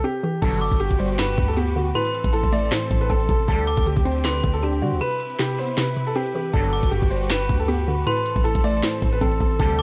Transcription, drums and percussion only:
0.42 kick, closed hi-hat, crash
0.53 closed hi-hat
0.61 closed hi-hat
0.72 kick, closed hi-hat
0.81 closed hi-hat
0.91 kick, closed hi-hat
1.00 closed hi-hat
1.06 closed hi-hat
1.12 closed hi-hat
1.19 snare, clap, closed hi-hat
1.29 closed hi-hat
1.38 kick, closed hi-hat
1.48 closed hi-hat
1.57 closed hi-hat
1.67 closed hi-hat
1.95 closed hi-hat
2.05 closed hi-hat
2.14 closed hi-hat
2.24 kick, closed hi-hat
2.34 closed hi-hat
2.43 kick, closed hi-hat
2.53 closed hi-hat, open hi-hat
2.59 closed hi-hat
2.65 closed hi-hat
2.72 snare, clap, closed hi-hat
2.82 closed hi-hat
2.91 kick, closed hi-hat
3.01 closed hi-hat
3.10 kick, closed hi-hat
3.20 closed hi-hat
3.29 kick
3.48 kick, closed hi-hat
3.58 closed hi-hat
3.67 closed hi-hat
3.77 kick, closed hi-hat
3.86 closed hi-hat
3.96 kick, closed hi-hat
4.06 closed hi-hat
4.12 closed hi-hat
4.18 closed hi-hat
4.25 snare, clap, closed hi-hat
4.35 closed hi-hat
4.44 kick, closed hi-hat
4.54 closed hi-hat
4.63 closed hi-hat
4.73 closed hi-hat
5.01 closed hi-hat
5.11 closed hi-hat
5.20 closed hi-hat
5.30 closed hi-hat
5.39 snare, clap, closed hi-hat
5.49 closed hi-hat
5.58 closed hi-hat, open hi-hat
5.69 closed hi-hat
5.78 snare, clap, closed hi-hat
5.88 closed hi-hat
5.97 closed hi-hat
6.07 closed hi-hat
6.16 closed hi-hat
6.26 closed hi-hat
6.54 kick, closed hi-hat
6.64 closed hi-hat
6.73 closed hi-hat
6.83 kick, closed hi-hat
6.92 closed hi-hat
7.02 kick, closed hi-hat
7.11 closed hi-hat
7.18 closed hi-hat
7.24 closed hi-hat
7.30 snare, clap, closed hi-hat
7.40 closed hi-hat
7.49 kick, closed hi-hat
7.60 closed hi-hat
7.68 closed hi-hat
7.79 closed hi-hat
8.07 closed hi-hat
8.17 closed hi-hat
8.26 closed hi-hat
8.36 kick, closed hi-hat
8.45 closed hi-hat
8.55 kick, closed hi-hat
8.64 closed hi-hat, open hi-hat
8.70 closed hi-hat
8.77 closed hi-hat
8.83 snare, clap, closed hi-hat
8.93 closed hi-hat
9.02 kick, closed hi-hat
9.13 closed hi-hat
9.21 kick, closed hi-hat
9.32 closed hi-hat
9.40 kick
9.60 kick, closed hi-hat
9.70 closed hi-hat
9.79 closed hi-hat

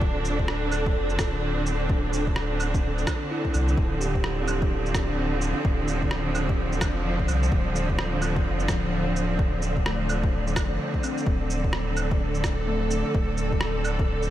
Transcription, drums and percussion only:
0.02 kick
0.25 shaker
0.39 kick
0.48 cross-stick
0.72 claves, shaker
0.86 kick
1.10 shaker
1.19 kick, cross-stick, shaker
1.66 shaker
1.90 kick
2.13 shaker
2.27 kick
2.36 cross-stick
2.60 claves, shaker
2.74 kick, shaker
2.98 shaker
3.07 kick, cross-stick, claves, shaker
3.45 kick
3.54 claves, shaker
3.68 shaker
3.77 kick
4.01 shaker
4.15 kick
4.24 cross-stick
4.48 claves, shaker
4.62 kick
4.86 shaker
4.95 kick, cross-stick, shaker
5.41 shaker
5.65 kick
5.88 shaker
6.02 kick
6.11 cross-stick
6.35 claves, shaker
6.49 kick
6.72 shaker
6.81 kick, cross-stick, claves, shaker
7.19 kick
7.28 claves, shaker
7.43 shaker
7.52 kick
7.75 shaker
7.90 kick
7.99 cross-stick
8.22 claves, shaker
8.36 kick
8.60 shaker
8.68 kick, cross-stick, shaker
9.16 shaker
9.39 kick
9.62 shaker
9.77 kick
9.86 cross-stick
10.09 claves, shaker
10.24 kick
10.47 shaker
10.56 kick, cross-stick, claves, shaker
10.94 kick
11.03 claves, shaker
11.18 shaker
11.27 kick
11.50 shaker
11.64 kick
11.73 cross-stick
11.97 claves, shaker
12.11 kick
12.35 shaker
12.44 kick, cross-stick, shaker
12.91 shaker
13.15 kick
13.37 shaker
13.52 kick
13.61 cross-stick
13.84 claves, shaker
13.99 kick
14.22 shaker

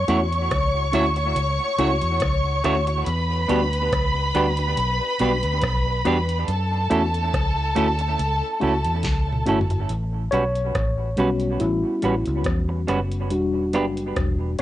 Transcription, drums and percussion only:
0.08 closed hi-hat
0.32 closed hi-hat
0.51 kick, cross-stick, closed hi-hat
0.93 closed hi-hat
1.16 closed hi-hat
1.36 closed hi-hat
1.79 closed hi-hat
2.02 closed hi-hat
2.20 kick, cross-stick, closed hi-hat
2.64 cross-stick, closed hi-hat
2.87 closed hi-hat
3.06 closed hi-hat
3.49 closed hi-hat
3.73 closed hi-hat
3.92 kick, cross-stick, closed hi-hat
4.35 closed hi-hat
4.57 closed hi-hat
4.77 closed hi-hat
5.19 closed hi-hat
5.43 closed hi-hat
5.62 kick, cross-stick, closed hi-hat
6.05 cross-stick, closed hi-hat
6.29 closed hi-hat
6.48 closed hi-hat
6.91 closed hi-hat
7.14 closed hi-hat
7.34 kick, cross-stick, closed hi-hat
7.76 closed hi-hat
7.99 closed hi-hat
8.19 closed hi-hat
8.61 closed hi-hat
8.85 closed hi-hat
9.03 kick, snare, closed hi-hat
9.32 mid tom
9.46 closed hi-hat
9.61 floor tom
9.70 closed hi-hat
9.89 closed hi-hat
10.32 closed hi-hat
10.55 closed hi-hat
10.75 kick, cross-stick, closed hi-hat
11.17 closed hi-hat
11.40 closed hi-hat
11.60 closed hi-hat
12.02 closed hi-hat
12.26 closed hi-hat
12.44 kick, cross-stick, closed hi-hat
12.88 cross-stick, closed hi-hat
13.12 closed hi-hat
13.31 closed hi-hat
13.73 closed hi-hat
13.97 closed hi-hat
14.16 kick, cross-stick, closed hi-hat

